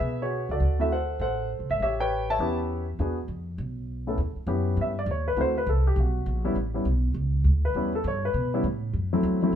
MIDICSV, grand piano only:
0, 0, Header, 1, 2, 480
1, 0, Start_track
1, 0, Tempo, 297471
1, 983, Time_signature, 4, 2, 24, 8
1, 15418, End_track
2, 0, Start_track
2, 0, Title_t, "Grand piano"
2, 0, Program_c, 0, 0
2, 0, Note_on_c, 0, 68, 53
2, 0, Note_on_c, 0, 71, 54
2, 0, Note_on_c, 0, 76, 91
2, 296, Note_off_c, 0, 76, 0
2, 340, Note_off_c, 0, 68, 0
2, 358, Note_on_c, 0, 73, 75
2, 363, Note_on_c, 0, 66, 53
2, 364, Note_on_c, 0, 68, 52
2, 749, Note_off_c, 0, 71, 0
2, 789, Note_off_c, 0, 73, 0
2, 802, Note_off_c, 0, 66, 0
2, 826, Note_on_c, 0, 66, 53
2, 826, Note_on_c, 0, 69, 53
2, 829, Note_on_c, 0, 74, 77
2, 958, Note_off_c, 0, 68, 0
2, 1266, Note_off_c, 0, 66, 0
2, 1280, Note_on_c, 0, 57, 56
2, 1282, Note_on_c, 0, 60, 50
2, 1287, Note_on_c, 0, 64, 51
2, 1291, Note_on_c, 0, 66, 63
2, 1307, Note_on_c, 0, 76, 75
2, 1310, Note_off_c, 0, 74, 0
2, 1443, Note_off_c, 0, 57, 0
2, 1444, Note_off_c, 0, 60, 0
2, 1447, Note_off_c, 0, 64, 0
2, 1448, Note_off_c, 0, 66, 0
2, 1472, Note_off_c, 0, 69, 0
2, 1479, Note_off_c, 0, 76, 0
2, 1488, Note_on_c, 0, 78, 76
2, 1492, Note_on_c, 0, 72, 54
2, 1496, Note_on_c, 0, 69, 54
2, 1931, Note_off_c, 0, 69, 0
2, 1933, Note_off_c, 0, 72, 0
2, 1936, Note_off_c, 0, 78, 0
2, 1956, Note_on_c, 0, 69, 55
2, 1958, Note_on_c, 0, 72, 60
2, 1960, Note_on_c, 0, 78, 82
2, 2398, Note_off_c, 0, 78, 0
2, 2753, Note_on_c, 0, 76, 78
2, 2844, Note_off_c, 0, 69, 0
2, 2845, Note_off_c, 0, 72, 0
2, 2905, Note_off_c, 0, 76, 0
2, 2944, Note_on_c, 0, 76, 84
2, 2949, Note_on_c, 0, 67, 61
2, 2958, Note_on_c, 0, 73, 62
2, 3204, Note_off_c, 0, 76, 0
2, 3216, Note_off_c, 0, 73, 0
2, 3234, Note_on_c, 0, 79, 95
2, 3236, Note_on_c, 0, 71, 64
2, 3241, Note_on_c, 0, 73, 68
2, 3705, Note_off_c, 0, 73, 0
2, 3712, Note_off_c, 0, 79, 0
2, 3715, Note_on_c, 0, 81, 97
2, 3722, Note_on_c, 0, 76, 61
2, 3729, Note_on_c, 0, 73, 61
2, 3821, Note_off_c, 0, 67, 0
2, 3870, Note_on_c, 0, 61, 55
2, 3871, Note_on_c, 0, 59, 59
2, 3877, Note_on_c, 0, 64, 58
2, 3878, Note_on_c, 0, 67, 67
2, 4115, Note_off_c, 0, 71, 0
2, 4146, Note_off_c, 0, 81, 0
2, 4587, Note_off_c, 0, 59, 0
2, 4587, Note_off_c, 0, 61, 0
2, 4590, Note_off_c, 0, 64, 0
2, 4591, Note_off_c, 0, 67, 0
2, 4598, Note_off_c, 0, 76, 0
2, 4601, Note_off_c, 0, 73, 0
2, 4836, Note_on_c, 0, 59, 53
2, 4838, Note_on_c, 0, 62, 49
2, 4844, Note_on_c, 0, 66, 50
2, 4850, Note_on_c, 0, 68, 60
2, 5100, Note_off_c, 0, 59, 0
2, 5101, Note_off_c, 0, 62, 0
2, 5104, Note_off_c, 0, 66, 0
2, 5106, Note_off_c, 0, 68, 0
2, 6567, Note_on_c, 0, 45, 54
2, 6570, Note_on_c, 0, 59, 46
2, 6574, Note_on_c, 0, 64, 46
2, 6576, Note_on_c, 0, 61, 49
2, 6585, Note_on_c, 0, 69, 56
2, 6726, Note_off_c, 0, 45, 0
2, 6728, Note_off_c, 0, 59, 0
2, 6730, Note_off_c, 0, 64, 0
2, 6731, Note_off_c, 0, 61, 0
2, 6735, Note_off_c, 0, 69, 0
2, 7218, Note_on_c, 0, 59, 58
2, 7225, Note_on_c, 0, 61, 53
2, 7227, Note_on_c, 0, 64, 54
2, 7227, Note_on_c, 0, 67, 63
2, 7767, Note_on_c, 0, 76, 71
2, 7941, Note_off_c, 0, 59, 0
2, 7944, Note_off_c, 0, 61, 0
2, 7945, Note_off_c, 0, 64, 0
2, 7945, Note_off_c, 0, 67, 0
2, 8027, Note_off_c, 0, 76, 0
2, 8048, Note_on_c, 0, 74, 81
2, 8200, Note_off_c, 0, 74, 0
2, 8244, Note_on_c, 0, 73, 75
2, 8506, Note_off_c, 0, 73, 0
2, 8514, Note_on_c, 0, 71, 77
2, 8664, Note_on_c, 0, 57, 57
2, 8668, Note_on_c, 0, 60, 52
2, 8673, Note_off_c, 0, 71, 0
2, 8675, Note_on_c, 0, 64, 50
2, 8679, Note_on_c, 0, 66, 59
2, 8726, Note_on_c, 0, 72, 79
2, 8934, Note_off_c, 0, 57, 0
2, 8936, Note_off_c, 0, 60, 0
2, 8939, Note_off_c, 0, 64, 0
2, 8941, Note_off_c, 0, 66, 0
2, 8987, Note_off_c, 0, 72, 0
2, 8998, Note_on_c, 0, 71, 76
2, 9155, Note_off_c, 0, 71, 0
2, 9184, Note_on_c, 0, 69, 68
2, 9456, Note_off_c, 0, 69, 0
2, 9478, Note_on_c, 0, 67, 75
2, 9635, Note_off_c, 0, 67, 0
2, 9682, Note_on_c, 0, 66, 59
2, 10381, Note_off_c, 0, 66, 0
2, 10399, Note_on_c, 0, 55, 67
2, 10401, Note_on_c, 0, 59, 59
2, 10410, Note_on_c, 0, 61, 60
2, 10410, Note_on_c, 0, 64, 75
2, 10562, Note_off_c, 0, 55, 0
2, 10564, Note_off_c, 0, 59, 0
2, 10568, Note_off_c, 0, 61, 0
2, 10568, Note_off_c, 0, 64, 0
2, 10879, Note_on_c, 0, 55, 55
2, 10887, Note_on_c, 0, 59, 50
2, 10894, Note_on_c, 0, 64, 59
2, 10895, Note_on_c, 0, 61, 51
2, 11042, Note_off_c, 0, 55, 0
2, 11046, Note_off_c, 0, 59, 0
2, 11050, Note_off_c, 0, 61, 0
2, 11050, Note_off_c, 0, 64, 0
2, 12344, Note_on_c, 0, 71, 76
2, 12517, Note_on_c, 0, 55, 60
2, 12522, Note_on_c, 0, 59, 53
2, 12524, Note_on_c, 0, 61, 55
2, 12533, Note_on_c, 0, 64, 64
2, 12781, Note_off_c, 0, 55, 0
2, 12781, Note_off_c, 0, 71, 0
2, 12783, Note_off_c, 0, 59, 0
2, 12785, Note_off_c, 0, 61, 0
2, 12789, Note_off_c, 0, 64, 0
2, 12831, Note_on_c, 0, 69, 72
2, 12992, Note_off_c, 0, 69, 0
2, 13031, Note_on_c, 0, 73, 81
2, 13300, Note_off_c, 0, 73, 0
2, 13314, Note_on_c, 0, 71, 77
2, 13747, Note_off_c, 0, 71, 0
2, 13776, Note_on_c, 0, 55, 68
2, 13783, Note_on_c, 0, 59, 59
2, 13785, Note_on_c, 0, 61, 62
2, 13789, Note_on_c, 0, 64, 72
2, 13932, Note_off_c, 0, 55, 0
2, 13935, Note_off_c, 0, 59, 0
2, 13936, Note_off_c, 0, 61, 0
2, 13938, Note_off_c, 0, 64, 0
2, 14729, Note_on_c, 0, 54, 64
2, 14729, Note_on_c, 0, 57, 54
2, 14736, Note_on_c, 0, 60, 58
2, 14740, Note_on_c, 0, 64, 68
2, 15177, Note_off_c, 0, 54, 0
2, 15177, Note_off_c, 0, 57, 0
2, 15180, Note_off_c, 0, 60, 0
2, 15182, Note_off_c, 0, 64, 0
2, 15213, Note_on_c, 0, 54, 61
2, 15221, Note_on_c, 0, 64, 71
2, 15223, Note_on_c, 0, 57, 56
2, 15225, Note_on_c, 0, 60, 54
2, 15418, Note_off_c, 0, 54, 0
2, 15418, Note_off_c, 0, 57, 0
2, 15418, Note_off_c, 0, 60, 0
2, 15418, Note_off_c, 0, 64, 0
2, 15418, End_track
0, 0, End_of_file